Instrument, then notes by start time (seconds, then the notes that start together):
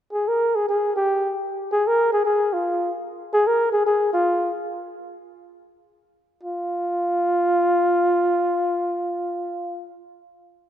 flugelhorn
0.12 G#4
0.28 A#4
0.55 G#4
0.69 G#4
0.96 G4
1.72 G#4
1.87 A#4
2.12 G#4
2.25 G#4
2.53 F4
3.33 G#4
3.47 A#4
3.72 G#4
3.86 G#4
4.13 F4
6.43 F4